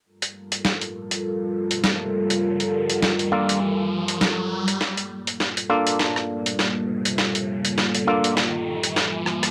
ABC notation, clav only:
X:1
M:4/4
L:1/8
Q:"Swing 16ths" 1/4=101
K:Gm
V:1 name="Clav"
z8 | z3 [B,DFA] z4 | z3 [B,DFA]4- [B,DFA]- | [B,DFA]3 [B,DFA] z4 |]